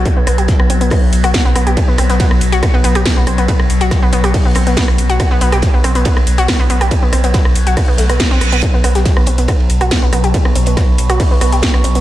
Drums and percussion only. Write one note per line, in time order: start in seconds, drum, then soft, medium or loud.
0.05 kick loud
0.05 closed hi-hat medium
0.05 ride medium
0.27 cross-stick medium
0.27 open hi-hat loud
0.27 ride medium
0.38 closed hi-hat medium
0.38 ride soft
0.48 kick loud
0.48 snare loud
0.48 closed hi-hat medium
0.48 ride medium
0.60 cross-stick medium
0.70 open hi-hat loud
0.70 ride medium
0.81 closed hi-hat medium
0.90 kick loud
0.90 cross-stick medium
0.90 closed hi-hat medium
0.90 open hi-hat medium
1.13 open hi-hat loud
1.13 ride medium
1.24 cross-stick medium
1.24 closed hi-hat medium
1.34 kick loud
1.34 snare loud
1.34 closed hi-hat medium
1.34 ride loud
1.55 cross-stick medium
1.55 open hi-hat loud
1.55 ride medium
1.67 closed hi-hat medium
1.77 kick loud
1.77 closed hi-hat medium
1.77 ride medium
1.88 snare soft
1.98 cross-stick medium
1.98 open hi-hat loud
1.98 ride medium
2.10 snare medium
2.10 closed hi-hat medium
2.20 kick loud
2.20 snare loud
2.20 closed hi-hat medium
2.20 ride medium
2.31 cross-stick medium
2.41 open hi-hat loud
2.41 ride medium
2.52 closed hi-hat medium
2.63 kick loud
2.63 cross-stick medium
2.63 closed hi-hat medium
2.63 ride medium
2.74 ride soft
2.84 open hi-hat loud
2.84 ride medium
2.95 cross-stick medium
2.95 closed hi-hat medium
3.05 kick loud
3.05 snare loud
3.05 closed hi-hat medium
3.05 ride medium
3.17 snare soft
3.27 cross-stick medium
3.27 open hi-hat loud
3.27 ride medium
3.38 closed hi-hat medium
3.48 kick loud
3.48 closed hi-hat medium
3.48 ride medium
3.60 cross-stick medium
3.70 open hi-hat loud
3.70 ride medium
3.81 closed hi-hat medium
3.81 ride soft
3.91 kick loud
3.91 cross-stick medium
3.91 snare loud
3.91 closed hi-hat medium
3.91 ride medium
4.13 open hi-hat loud
4.13 ride medium
4.24 cross-stick medium
4.24 closed hi-hat medium
4.34 kick loud
4.34 closed hi-hat medium
4.34 open hi-hat medium
4.34 ride medium
4.55 cross-stick medium
4.55 open hi-hat loud
4.55 ride medium
4.67 closed hi-hat medium
4.77 kick loud
4.77 snare loud
4.77 closed hi-hat medium
4.77 ride medium
4.88 cross-stick medium
4.98 open hi-hat loud
4.98 ride medium
5.10 closed hi-hat medium
5.20 kick loud
5.20 cross-stick medium
5.20 closed hi-hat medium
5.20 ride medium
5.31 snare soft
5.41 open hi-hat loud
5.41 ride medium
5.52 cross-stick medium
5.52 snare soft
5.52 closed hi-hat medium
5.62 kick loud
5.62 snare loud
5.62 closed hi-hat medium
5.62 ride medium
5.84 cross-stick medium
5.84 open hi-hat loud
5.84 ride medium
5.95 closed hi-hat medium
6.05 kick loud
6.05 closed hi-hat medium
6.05 ride loud
6.05 ride medium
6.17 cross-stick medium
6.17 ride soft
6.27 open hi-hat loud
6.27 ride medium
6.38 closed hi-hat medium
6.48 kick loud
6.48 cross-stick medium
6.48 snare loud
6.48 closed hi-hat medium
6.48 ride medium
6.59 snare soft
6.70 open hi-hat loud
6.70 ride medium
6.81 cross-stick medium
6.81 closed hi-hat medium
6.91 kick loud
6.91 closed hi-hat medium
6.91 ride medium
7.13 cross-stick medium
7.13 open hi-hat loud
7.13 ride medium
7.24 closed hi-hat medium
7.24 ride soft
7.34 kick loud
7.34 snare loud
7.34 closed hi-hat medium
7.34 ride medium
7.45 cross-stick medium
7.55 open hi-hat loud
7.55 ride medium
7.67 closed hi-hat medium
7.77 kick loud
7.77 cross-stick medium
7.77 closed hi-hat medium
7.77 open hi-hat medium
7.77 ride medium
7.98 snare loud
7.98 open hi-hat loud
7.98 ride medium
8.09 cross-stick medium
8.09 closed hi-hat medium
8.20 kick loud
8.20 snare loud
8.20 closed hi-hat medium
8.20 ride medium
8.31 snare loud
8.31 ride medium
8.41 cross-stick medium
8.41 open hi-hat loud
8.52 closed hi-hat medium
8.52 ride medium
8.63 kick loud
8.63 closed hi-hat medium
8.63 ride medium
8.74 snare soft
8.84 cross-stick medium
8.84 open hi-hat loud
8.84 ride medium
8.95 snare medium
8.95 closed hi-hat medium
9.05 kick loud
9.05 snare loud
9.05 closed hi-hat medium
9.05 ride medium
9.17 cross-stick medium
9.26 open hi-hat loud
9.26 ride medium
9.38 closed hi-hat medium
9.48 kick loud
9.48 cross-stick medium
9.48 closed hi-hat medium
9.48 ride loud
9.48 ride medium
9.60 ride soft
9.70 open hi-hat loud
9.70 ride medium
9.81 cross-stick medium
9.81 closed hi-hat medium
9.91 kick loud
9.91 snare loud
9.91 closed hi-hat medium
9.91 ride medium
10.02 snare soft
10.13 cross-stick medium
10.13 open hi-hat loud
10.13 ride medium
10.24 closed hi-hat medium
10.34 kick loud
10.34 closed hi-hat medium
10.34 ride medium
10.45 cross-stick medium
10.55 open hi-hat loud
10.55 ride medium
10.66 closed hi-hat medium
10.66 ride soft
10.77 kick loud
10.77 cross-stick medium
10.77 snare loud
10.77 closed hi-hat medium
10.77 ride medium
10.98 open hi-hat loud
10.98 ride medium
11.10 cross-stick medium
11.10 closed hi-hat medium
11.20 kick loud
11.20 closed hi-hat medium
11.20 open hi-hat medium
11.20 ride medium
11.41 cross-stick medium
11.41 open hi-hat loud
11.41 ride medium
11.52 closed hi-hat medium
11.62 kick loud
11.62 snare loud
11.62 closed hi-hat medium
11.62 ride medium
11.74 cross-stick medium
11.84 open hi-hat loud
11.84 ride medium
11.95 closed hi-hat medium